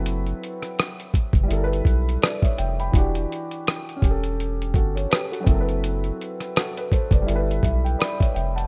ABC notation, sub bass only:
X:1
M:4/4
L:1/16
Q:"Swing 16ths" 1/4=83
K:Ador
V:1 name="Sub bass" clef=bass
F,,,2 z4 z F,,, G,,,2 B,,,2 z2 =F,,,2 | E,,,2 z4 E,,,4 G,,,2 z2 F,,,2- | F,,,2 z4 z F,,, G,,,2 B,,,2 z2 =F,,,2 |]